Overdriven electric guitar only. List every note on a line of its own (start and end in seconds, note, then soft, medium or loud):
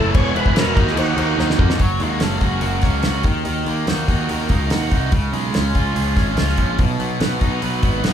0.00 0.13 A2 medium
0.00 0.13 E3 medium
0.00 0.14 A3 loud
0.13 0.33 E2 loud
0.13 0.33 B2 medium
0.13 0.34 E3 loud
0.34 0.53 E2 medium
0.34 0.53 B2 medium
0.34 0.53 E3 medium
0.54 0.74 E2 medium
0.54 0.75 B2 medium
0.54 0.75 E3 medium
0.75 0.95 D#3 medium
0.75 0.96 A#3 loud
0.75 0.96 D#4 loud
0.96 1.16 D#3 loud
0.96 1.16 A#3 loud
0.96 1.17 D#4 loud
1.17 1.36 D#3 medium
1.17 1.37 A#3 medium
1.17 1.37 D#4 medium
1.38 1.57 D#3 medium
1.38 1.58 A#3 medium
1.38 1.58 D#4 medium
1.59 1.78 D#3 medium
1.59 1.79 A#3 medium
1.59 1.79 D#4 medium
1.79 2.83 F#3 medium
2.00 3.04 G#3 medium
2.21 2.82 C#4 medium
2.42 3.03 F#4 medium
2.63 3.25 A#4 medium
2.83 3.25 C#4 medium
3.04 3.25 F#4 medium
3.24 3.44 D#3 medium
3.45 4.49 D#3 medium
3.67 4.71 A#3 medium
3.87 4.49 D#4 medium
4.09 4.70 F#4 medium
4.30 5.12 A#4 medium
4.50 4.91 D#4 medium
4.71 5.12 F#4 medium
4.92 5.12 D#4 medium
5.12 6.16 C#3 medium
5.33 6.37 G#3 medium
5.54 6.15 C#4 medium
5.75 6.36 F4 medium
5.96 6.79 G#4 medium
6.16 6.57 C#4 medium
6.37 6.79 F4 medium
6.58 6.79 C#4 medium
6.79 7.83 B2 medium
7.00 8.13 F#3 medium
7.20 7.82 B3 medium
7.41 8.02 D#4 medium
7.62 8.13 B4 medium
7.83 8.13 B3 medium
8.03 8.13 D#4 medium